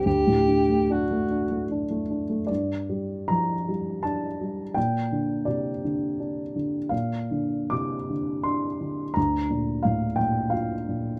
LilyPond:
<<
  \new Staff \with { instrumentName = "Alto saxophone" } { \time 3/4 \key g \minor \tempo 4 = 82 g'4 fis'4 r4 | r2. | r2. | r2. |
r2. | }
  \new Staff \with { instrumentName = "Grand piano" } { \time 3/4 \key g \minor r2. | d''4 bes''4 a''4 | g''4 d''4. r8 | f''4 d'''4 c'''4 |
bes''4 f''8 g''8 f''4 | }
  \new Staff \with { instrumentName = "Grand piano" } { \clef bass \time 3/4 \key g \minor d,16 a,16 d16 a16 d'16 a16 d'16 a16 d'16 a16 d'16 a16 | g,8 g8 f8 g8 d'8 g8 | bes,8 d8 c8 d8 d'8 d8 | bes,8 d8 c8 d8 d'8 d8 |
d,8 bes,8 a,8 bes,8 f'8 bes,8 | }
>>